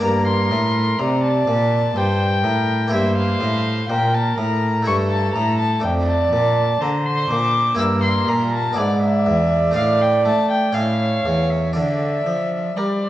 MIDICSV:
0, 0, Header, 1, 5, 480
1, 0, Start_track
1, 0, Key_signature, -1, "minor"
1, 0, Tempo, 970874
1, 14, Time_signature, 3, 2, 24, 8
1, 3854, Tempo, 986842
1, 5294, Tempo, 1008403
1, 6407, End_track
2, 0, Start_track
2, 0, Title_t, "Violin"
2, 0, Program_c, 0, 40
2, 18, Note_on_c, 0, 82, 92
2, 131, Note_off_c, 0, 82, 0
2, 134, Note_on_c, 0, 84, 101
2, 489, Note_on_c, 0, 82, 94
2, 496, Note_off_c, 0, 84, 0
2, 607, Note_off_c, 0, 82, 0
2, 610, Note_on_c, 0, 81, 94
2, 975, Note_on_c, 0, 79, 98
2, 982, Note_off_c, 0, 81, 0
2, 1448, Note_off_c, 0, 79, 0
2, 1451, Note_on_c, 0, 76, 88
2, 1566, Note_off_c, 0, 76, 0
2, 1569, Note_on_c, 0, 77, 95
2, 1921, Note_off_c, 0, 77, 0
2, 1924, Note_on_c, 0, 79, 88
2, 2047, Note_on_c, 0, 81, 93
2, 2055, Note_off_c, 0, 79, 0
2, 2163, Note_off_c, 0, 81, 0
2, 2166, Note_on_c, 0, 82, 99
2, 2403, Note_off_c, 0, 82, 0
2, 2406, Note_on_c, 0, 85, 97
2, 2446, Note_off_c, 0, 85, 0
2, 2523, Note_on_c, 0, 81, 88
2, 2636, Note_off_c, 0, 81, 0
2, 2639, Note_on_c, 0, 82, 94
2, 2759, Note_off_c, 0, 82, 0
2, 2762, Note_on_c, 0, 81, 89
2, 2883, Note_off_c, 0, 81, 0
2, 2887, Note_on_c, 0, 79, 87
2, 2927, Note_off_c, 0, 79, 0
2, 3006, Note_on_c, 0, 81, 92
2, 3370, Note_on_c, 0, 82, 95
2, 3377, Note_off_c, 0, 81, 0
2, 3488, Note_on_c, 0, 84, 87
2, 3495, Note_off_c, 0, 82, 0
2, 3605, Note_off_c, 0, 84, 0
2, 3608, Note_on_c, 0, 86, 100
2, 3844, Note_off_c, 0, 86, 0
2, 3847, Note_on_c, 0, 88, 99
2, 3966, Note_off_c, 0, 88, 0
2, 3968, Note_on_c, 0, 84, 93
2, 4094, Note_on_c, 0, 82, 83
2, 4101, Note_off_c, 0, 84, 0
2, 4211, Note_off_c, 0, 82, 0
2, 4214, Note_on_c, 0, 81, 84
2, 4331, Note_on_c, 0, 74, 83
2, 4338, Note_off_c, 0, 81, 0
2, 4443, Note_off_c, 0, 74, 0
2, 4446, Note_on_c, 0, 76, 91
2, 4800, Note_off_c, 0, 76, 0
2, 4809, Note_on_c, 0, 77, 84
2, 4934, Note_on_c, 0, 79, 79
2, 4941, Note_off_c, 0, 77, 0
2, 5049, Note_off_c, 0, 79, 0
2, 5052, Note_on_c, 0, 81, 86
2, 5169, Note_off_c, 0, 81, 0
2, 5173, Note_on_c, 0, 79, 84
2, 5286, Note_on_c, 0, 77, 81
2, 5293, Note_off_c, 0, 79, 0
2, 5646, Note_on_c, 0, 76, 74
2, 5653, Note_off_c, 0, 77, 0
2, 5768, Note_off_c, 0, 76, 0
2, 5770, Note_on_c, 0, 76, 84
2, 6250, Note_on_c, 0, 74, 67
2, 6257, Note_off_c, 0, 76, 0
2, 6407, Note_off_c, 0, 74, 0
2, 6407, End_track
3, 0, Start_track
3, 0, Title_t, "Violin"
3, 0, Program_c, 1, 40
3, 15, Note_on_c, 1, 70, 78
3, 495, Note_on_c, 1, 74, 81
3, 502, Note_off_c, 1, 70, 0
3, 965, Note_off_c, 1, 74, 0
3, 967, Note_on_c, 1, 72, 72
3, 1202, Note_off_c, 1, 72, 0
3, 1204, Note_on_c, 1, 70, 73
3, 1440, Note_off_c, 1, 70, 0
3, 1447, Note_on_c, 1, 72, 85
3, 1928, Note_on_c, 1, 70, 74
3, 1936, Note_off_c, 1, 72, 0
3, 2403, Note_off_c, 1, 70, 0
3, 2406, Note_on_c, 1, 69, 80
3, 2886, Note_on_c, 1, 74, 86
3, 2893, Note_off_c, 1, 69, 0
3, 3363, Note_on_c, 1, 72, 82
3, 3371, Note_off_c, 1, 74, 0
3, 3843, Note_off_c, 1, 72, 0
3, 3846, Note_on_c, 1, 70, 76
3, 4323, Note_on_c, 1, 74, 83
3, 4330, Note_off_c, 1, 70, 0
3, 5287, Note_on_c, 1, 73, 75
3, 5294, Note_off_c, 1, 74, 0
3, 5765, Note_off_c, 1, 73, 0
3, 5767, Note_on_c, 1, 74, 69
3, 6193, Note_off_c, 1, 74, 0
3, 6249, Note_on_c, 1, 70, 69
3, 6287, Note_off_c, 1, 70, 0
3, 6370, Note_on_c, 1, 72, 60
3, 6407, Note_off_c, 1, 72, 0
3, 6407, End_track
4, 0, Start_track
4, 0, Title_t, "Harpsichord"
4, 0, Program_c, 2, 6
4, 0, Note_on_c, 2, 58, 51
4, 0, Note_on_c, 2, 62, 54
4, 4, Note_on_c, 2, 70, 55
4, 10, Note_on_c, 2, 43, 61
4, 232, Note_off_c, 2, 43, 0
4, 233, Note_off_c, 2, 58, 0
4, 237, Note_off_c, 2, 62, 0
4, 254, Note_on_c, 2, 45, 58
4, 473, Note_off_c, 2, 45, 0
4, 493, Note_on_c, 2, 48, 57
4, 712, Note_off_c, 2, 48, 0
4, 730, Note_on_c, 2, 46, 56
4, 949, Note_off_c, 2, 46, 0
4, 970, Note_on_c, 2, 43, 58
4, 1188, Note_off_c, 2, 43, 0
4, 1207, Note_on_c, 2, 45, 60
4, 1422, Note_off_c, 2, 70, 0
4, 1423, Note_on_c, 2, 58, 55
4, 1427, Note_off_c, 2, 45, 0
4, 1431, Note_on_c, 2, 64, 55
4, 1437, Note_on_c, 2, 67, 56
4, 1446, Note_on_c, 2, 43, 61
4, 1667, Note_off_c, 2, 43, 0
4, 1667, Note_off_c, 2, 58, 0
4, 1685, Note_on_c, 2, 45, 59
4, 1907, Note_off_c, 2, 45, 0
4, 1927, Note_on_c, 2, 46, 60
4, 2148, Note_off_c, 2, 46, 0
4, 2165, Note_on_c, 2, 45, 54
4, 2381, Note_off_c, 2, 64, 0
4, 2385, Note_off_c, 2, 67, 0
4, 2385, Note_on_c, 2, 57, 53
4, 2388, Note_off_c, 2, 45, 0
4, 2394, Note_on_c, 2, 64, 55
4, 2400, Note_on_c, 2, 69, 56
4, 2407, Note_on_c, 2, 43, 64
4, 2628, Note_off_c, 2, 43, 0
4, 2649, Note_on_c, 2, 45, 57
4, 2862, Note_off_c, 2, 57, 0
4, 2867, Note_off_c, 2, 64, 0
4, 2868, Note_on_c, 2, 57, 52
4, 2869, Note_off_c, 2, 45, 0
4, 2870, Note_off_c, 2, 69, 0
4, 2874, Note_on_c, 2, 62, 55
4, 2881, Note_on_c, 2, 69, 54
4, 2890, Note_on_c, 2, 41, 59
4, 3110, Note_off_c, 2, 41, 0
4, 3111, Note_off_c, 2, 57, 0
4, 3129, Note_on_c, 2, 46, 57
4, 3350, Note_off_c, 2, 46, 0
4, 3371, Note_on_c, 2, 50, 58
4, 3591, Note_off_c, 2, 50, 0
4, 3612, Note_on_c, 2, 46, 58
4, 3824, Note_off_c, 2, 62, 0
4, 3828, Note_off_c, 2, 69, 0
4, 3829, Note_on_c, 2, 58, 57
4, 3833, Note_off_c, 2, 46, 0
4, 3836, Note_on_c, 2, 64, 55
4, 3844, Note_on_c, 2, 67, 53
4, 3851, Note_on_c, 2, 43, 58
4, 4070, Note_off_c, 2, 43, 0
4, 4091, Note_on_c, 2, 46, 59
4, 4304, Note_off_c, 2, 58, 0
4, 4307, Note_off_c, 2, 64, 0
4, 4308, Note_on_c, 2, 59, 51
4, 4310, Note_off_c, 2, 46, 0
4, 4312, Note_off_c, 2, 67, 0
4, 4314, Note_on_c, 2, 62, 52
4, 4322, Note_on_c, 2, 64, 51
4, 4329, Note_on_c, 2, 44, 56
4, 4549, Note_off_c, 2, 44, 0
4, 4568, Note_on_c, 2, 40, 60
4, 4783, Note_off_c, 2, 59, 0
4, 4786, Note_off_c, 2, 62, 0
4, 4787, Note_on_c, 2, 57, 49
4, 4789, Note_off_c, 2, 40, 0
4, 4790, Note_off_c, 2, 64, 0
4, 4796, Note_on_c, 2, 62, 48
4, 4801, Note_on_c, 2, 69, 47
4, 4810, Note_on_c, 2, 45, 52
4, 5031, Note_off_c, 2, 45, 0
4, 5045, Note_off_c, 2, 57, 0
4, 5050, Note_on_c, 2, 57, 51
4, 5270, Note_off_c, 2, 62, 0
4, 5272, Note_off_c, 2, 57, 0
4, 5272, Note_off_c, 2, 69, 0
4, 5279, Note_on_c, 2, 61, 48
4, 5287, Note_on_c, 2, 69, 51
4, 5294, Note_on_c, 2, 45, 54
4, 5511, Note_off_c, 2, 45, 0
4, 5532, Note_on_c, 2, 40, 53
4, 5749, Note_off_c, 2, 61, 0
4, 5752, Note_off_c, 2, 40, 0
4, 5753, Note_off_c, 2, 69, 0
4, 5757, Note_on_c, 2, 62, 46
4, 5765, Note_on_c, 2, 69, 49
4, 5772, Note_on_c, 2, 50, 51
4, 5993, Note_off_c, 2, 50, 0
4, 6011, Note_on_c, 2, 53, 54
4, 6232, Note_off_c, 2, 53, 0
4, 6254, Note_on_c, 2, 55, 49
4, 6407, Note_off_c, 2, 55, 0
4, 6407, Note_off_c, 2, 62, 0
4, 6407, Note_off_c, 2, 69, 0
4, 6407, End_track
5, 0, Start_track
5, 0, Title_t, "Cello"
5, 0, Program_c, 3, 42
5, 15, Note_on_c, 3, 43, 74
5, 253, Note_on_c, 3, 45, 74
5, 261, Note_off_c, 3, 43, 0
5, 490, Note_off_c, 3, 45, 0
5, 493, Note_on_c, 3, 48, 71
5, 727, Note_off_c, 3, 48, 0
5, 732, Note_on_c, 3, 46, 74
5, 965, Note_off_c, 3, 46, 0
5, 969, Note_on_c, 3, 43, 72
5, 1205, Note_on_c, 3, 45, 72
5, 1213, Note_off_c, 3, 43, 0
5, 1448, Note_on_c, 3, 43, 75
5, 1456, Note_off_c, 3, 45, 0
5, 1685, Note_off_c, 3, 43, 0
5, 1688, Note_on_c, 3, 45, 70
5, 1923, Note_off_c, 3, 45, 0
5, 1928, Note_on_c, 3, 46, 75
5, 2164, Note_off_c, 3, 46, 0
5, 2172, Note_on_c, 3, 45, 72
5, 2410, Note_on_c, 3, 43, 70
5, 2418, Note_off_c, 3, 45, 0
5, 2646, Note_off_c, 3, 43, 0
5, 2649, Note_on_c, 3, 45, 75
5, 2884, Note_off_c, 3, 45, 0
5, 2890, Note_on_c, 3, 41, 75
5, 3125, Note_off_c, 3, 41, 0
5, 3128, Note_on_c, 3, 46, 71
5, 3364, Note_off_c, 3, 46, 0
5, 3368, Note_on_c, 3, 50, 70
5, 3604, Note_off_c, 3, 50, 0
5, 3610, Note_on_c, 3, 46, 71
5, 3846, Note_off_c, 3, 46, 0
5, 3850, Note_on_c, 3, 43, 70
5, 4085, Note_off_c, 3, 43, 0
5, 4089, Note_on_c, 3, 46, 72
5, 4324, Note_off_c, 3, 46, 0
5, 4331, Note_on_c, 3, 44, 74
5, 4569, Note_on_c, 3, 40, 67
5, 4577, Note_off_c, 3, 44, 0
5, 4807, Note_off_c, 3, 40, 0
5, 4809, Note_on_c, 3, 45, 70
5, 5051, Note_on_c, 3, 57, 63
5, 5058, Note_off_c, 3, 45, 0
5, 5288, Note_off_c, 3, 57, 0
5, 5291, Note_on_c, 3, 45, 65
5, 5524, Note_off_c, 3, 45, 0
5, 5530, Note_on_c, 3, 40, 64
5, 5769, Note_on_c, 3, 50, 66
5, 5776, Note_off_c, 3, 40, 0
5, 6007, Note_off_c, 3, 50, 0
5, 6010, Note_on_c, 3, 53, 62
5, 6246, Note_off_c, 3, 53, 0
5, 6251, Note_on_c, 3, 55, 63
5, 6407, Note_off_c, 3, 55, 0
5, 6407, End_track
0, 0, End_of_file